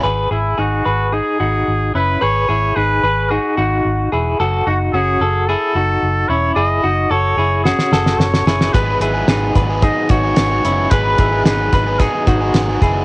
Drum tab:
HH |----------------|----------------|----------------|----------------|
SD |----------------|----------------|----------------|--------oooooooo|
BD |----------------|----------------|----------------|----------------|

HH |x-x-x-x-x-x-x-x-|x-x-x-x-x-x-x-x-|
SD |----o-------o---|----o-------o---|
BD |o-----o-o-o-----|o-o---o-o-o---o-|